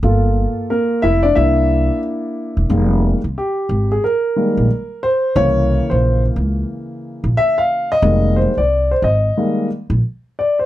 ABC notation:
X:1
M:4/4
L:1/16
Q:"Swing 16ths" 1/4=90
K:Cm
V:1 name="Grand piano"
z4 [B,B]2 [=E=e] [Dd] [Ee]4 z4 | z4 G3 A B6 c2 | _d3 c2 z6 z =e f2 _e- | e2 c d2 c e4 z4 d c |]
V:2 name="Grand piano" clef=bass
[B,F=A]6 z2 [B,D]8 | [E,G,A,B,]2 z8 [E,G,A,B,]2 z4 | [_D,=E,B,]16 | [E,G,A,B,]2 z6 [E,G,A,B,]2 z6 |]
V:3 name="Upright bass" clef=bass
G,,,3 z3 F,,,2 C,,4 z3 =E,,, | F,,,3 C,, z2 A,,,2 z3 B,,, z4 | C,,3 B,,,3 _D,,2 z3 B,,, z4 | F,,,3 C,,3 A,,,2 z3 B,,, z4 |]